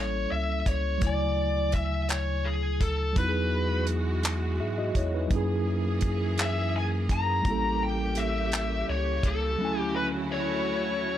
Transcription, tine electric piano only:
Already playing: G3 A#3 C#4 E4 A4
0.98 F#3 A3
1.02 C#3 E4
1.07 G#5
3.13 F#3 B3
3.17 D#4 E4
3.22 F#4
3.28 G#4
4.60 G#4 E5
4.78 F#4 D#5
4.96 E4 C#5
5.14 D#4 B4
5.28 F#3 A#3
5.32 C#4 E4
5.36 G#4
7.42 G3 A#3 C4
7.48 E4 A4
7.52 C#4
9.56 D2 F#3 A3
9.61 C#4 E4 G#5

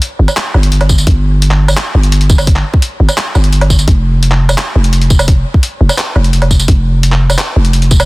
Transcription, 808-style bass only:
0.19 G1
0.54 G1
1.07 G1
1.95 G1
3.00 G1
3.35 G1
3.88 F1
4.76 F1
5.81 F1
6.16 F1
6.68 F1
7.56 F1

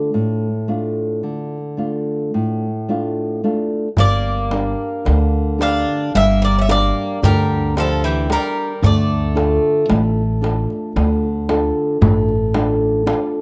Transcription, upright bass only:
3.98 G1
5.07 D2
6.15 G1
7.23 D2
8.83 D2
9.91 A1
10.96 D2
12.02 A1

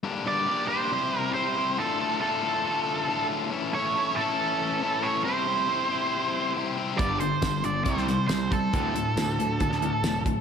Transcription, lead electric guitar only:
0.27 D5
0.68 C5
1.20 A#4
1.34 C5
1.78 A4
2.21 A4
3.74 C#5
4.16 A4
5.03 C#5
5.24 C5
6.98 D5
7.20 C5
7.65 D5
7.85 C5
8.28 C5
8.51 A4

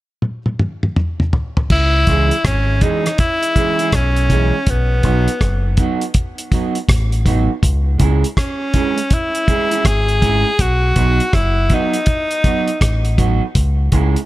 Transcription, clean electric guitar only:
2.08 E3 G#3 C#4 G#4
2.81 E3 G#3 C#4 G#4
3.06 muted clean electric guitar stroke
3.55 E3 G#3 C#4 G#4
3.80 E3 G#3 C#4 G#4
4.30 E3 G#3 C#4 G#4
5.03 F#3 B3 D#4 F#4
5.78 F#3 B3 D#4 F#4
6.51 F#3 B3 D#4 F#4
7.25 F#3 B3 D#4 F#4
7.98 G#3 C#4 E4 G#4
8.73 G#3 C#4 E4 G#4
8.97 muted clean electric guitar stroke
9.47 G#3 C#4 E4 G#4
9.72 G#3 C#4 E4 G#4
10.22 G#3 C#4 E4 G#4
10.96 F#3 B3 D#4 F#4
11.71 F#3 B3 D#4 F#4
12.44 F#3 B3 D#4 F#4
13.17 F#3 B3 D#4 F#4
13.92 G#3 C#4 E4 G#4

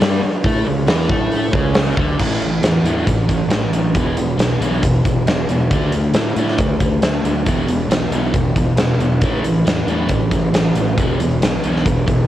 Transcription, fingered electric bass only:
0.00 G2
0.22 muted fingered electric bass stroke
0.44 A2
0.67 C#2
0.87 E2
1.10 A2
1.53 C#2
1.97 D2
2.20 A1
2.61 E2
2.83 E2
3.07 A1
3.29 A1
3.48 A1
3.70 A1
3.95 E1
4.37 B1
4.60 B1
4.82 E1
5.05 E1
5.26 E1
5.49 E1
5.70 D2
6.13 A2
6.36 A2
6.59 D2
6.80 D2
7.01 D2
7.23 D2
7.47 E1
7.89 B1
8.10 B1
8.34 E1
8.56 E1
8.75 E1
8.97 E1
9.22 A1
9.65 E2
9.86 E2
10.10 A1
10.31 A1
10.53 A1
10.75 A1
10.98 E1
11.40 B1
11.62 B1
11.86 E1
12.08 E1

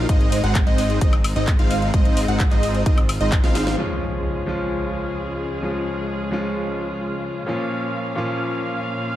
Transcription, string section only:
Already playing: D#4
0.09 G#3 C4
1.94 F4
3.78 C#2 C#3 G#3 F4 G#4
7.48 A#2 A#3 C#4 F5

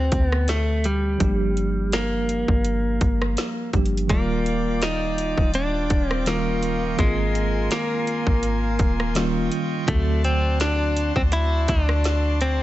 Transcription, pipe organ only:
4.10 F4 D5 G5 D6
6.27 D#5 C#6
6.99 A#4 G#5 C6
9.15 D#5 G5 C#6
9.87 F#4 D5 A5 C6

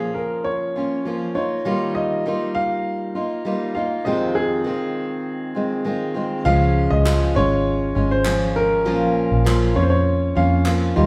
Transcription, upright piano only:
Already playing: G#4
0.14 A#4
0.44 C#5
1.35 C#5
1.95 D#5
2.55 F5
3.75 F5
4.05 D#5
4.35 G#4
6.45 F5
6.90 D#5
7.36 C#5
8.11 C5
8.56 A#4
9.76 C#5
9.83 C5
9.90 C#5
10.37 F5

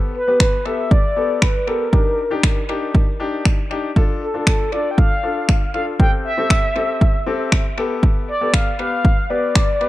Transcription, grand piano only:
Already playing: B3 G4 A4
0.27 B3 G4 B4
0.65 B3 G4 A4
1.16 B3 G4 A4
1.67 B3 G4 A4
1.93 D4 D#4 G4
2.31 D4 D#4 G4
2.69 D4 D#4 G4
3.20 D4 D#4 G4
3.71 D4 D#4 G4
3.96 D4 F4 A4
4.34 D4 F4 A4
4.72 D4 F4 A4
5.23 D4 F4 A4
5.74 D4 F4 A4
5.99 C4 G4 A4
6.37 C4 G4 A4
6.76 C4 G4 A4
7.26 C4 G4 A4
7.77 B3 G4 A4
8.41 B3 G4 A4
8.79 B3 G4 B4
9.30 B3 G4 B4
9.81 B3 G4 B4

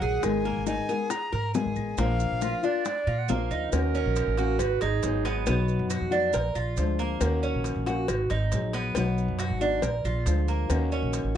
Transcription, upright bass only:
0.01 A#1
0.24 G#1
0.56 G#1
1.33 G#2
1.66 G#1
1.76 A1
1.98 A#1
2.31 A#1
3.07 A#2
3.29 A#1
3.51 D2
3.73 D#2
4.06 A#1
4.27 A1
4.60 G#1
4.82 G#1
5.03 G#1
5.47 B1
5.79 F#2
6.01 F2
6.34 A#1
6.56 A#1
6.77 D2
7.21 D#2
7.54 A#1
7.76 A#1
8.09 G#1
8.31 G#1
8.52 A#1
8.96 B1
9.28 F#2
9.50 G#1
9.82 A#1
10.04 A#1
10.26 D2
10.70 D#2
11.02 A#1
11.24 A1

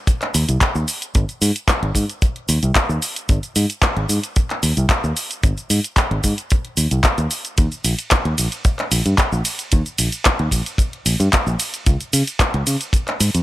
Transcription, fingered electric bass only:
0.35 D#2
0.49 C2
0.75 D#2
1.15 G#1
1.42 G#2
1.82 G#1
1.95 G#2
2.49 D#2
2.63 C2
2.89 D#2
3.29 G#1
3.56 G#2
3.97 G#1
4.09 G#2
4.63 D#2
4.77 C2
5.04 D#2
5.43 G#1
5.70 G#2
6.11 G#1
6.24 G#2
6.77 D#2
6.91 C2
7.18 D#2
7.58 D#2
7.84 A#1
8.25 D#2
8.38 A#1
8.91 A#1
9.06 G2
9.32 A#1
9.73 D#2
9.99 A#1
10.40 D#2
10.51 A#1
11.06 A#1
11.20 G2
11.47 A#1
11.87 C#2
12.13 C#3
12.54 C#2
12.67 C#3
13.20 G#2
13.35 F2

